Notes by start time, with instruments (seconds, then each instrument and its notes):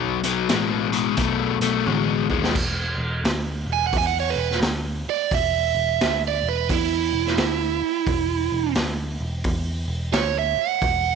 Already playing: picked electric bass B1, overdriven electric guitar B2 F#3
0.23 overdriven electric guitar B2 F#3, closed hi-hat
0.49 picked electric bass A1, overdriven electric guitar B2 G#3, snare, closed hi-hat
0.92 overdriven electric guitar B2 G#3, closed hi-hat
1.17 picked electric bass B1, overdriven electric guitar B2 A3, kick, closed hi-hat
1.60 picked electric bass B1, overdriven electric guitar B2 A3, closed hi-hat
1.86 picked electric bass A1, overdriven electric guitar B2 G#3, high tom
2.29 picked electric bass D#2, overdriven electric guitar B2 G#3, kick
2.44 snare
2.55 picked electric bass E1, kick, crash
2.98 picked electric bass E1
3.24 picked electric bass D2, snare, open hi-hat
3.67 picked electric bass E1
3.73 lead electric guitar G#5
3.87 lead electric guitar F#5
3.93 picked electric bass E2, kick, open hi-hat
3.98 lead electric guitar G#5
4.07 lead electric guitar F#5
4.20 lead electric guitar C#5
4.30 lead electric guitar B4
4.36 picked electric bass E1
4.51 snare
4.61 picked electric bass D2, snare, open hi-hat
5.06 lead electric guitar D5, muted picked electric bass stroke
5.31 picked electric bass E1, lead electric guitar E5, kick, open hi-hat
5.75 picked electric bass E1
6.01 picked electric bass D2, snare, open hi-hat
6.28 lead electric guitar D5
6.43 picked electric bass E1
6.49 lead electric guitar B4
6.69 picked electric bass E2, lead electric guitar E4, kick, open hi-hat
7.13 picked electric bass E1
7.26 snare
7.38 picked electric bass D2, snare, open hi-hat
7.82 muted picked electric bass stroke
8.07 picked electric bass E1, kick, open hi-hat
8.52 picked electric bass E1
8.75 picked electric bass D2, snare, open hi-hat
9.20 picked electric bass E1
9.44 picked electric bass E2, kick, open hi-hat
9.88 picked electric bass E1
10.13 picked electric bass D2, lead electric guitar C#5, snare, open hi-hat
10.39 lead electric guitar E5
10.57 muted picked electric bass stroke
10.62 lead electric guitar F#5
10.82 picked electric bass E1, kick, open hi-hat